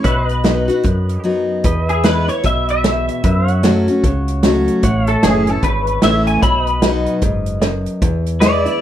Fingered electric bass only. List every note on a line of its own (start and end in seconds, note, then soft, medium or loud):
0.05 0.69 B1 medium
0.85 1.17 F#2 medium
1.65 2.28 E2 medium
2.45 3.08 B1 medium
3.24 3.88 F#2 medium
4.04 4.68 C#2 medium
4.83 5.15 A1 loud
5.23 5.57 F#1 medium
5.63 5.97 G#1 medium
6.03 6.37 A1 medium
6.43 7.06 B1 medium
7.22 7.86 F#1 medium
8.02 8.66 E2 loud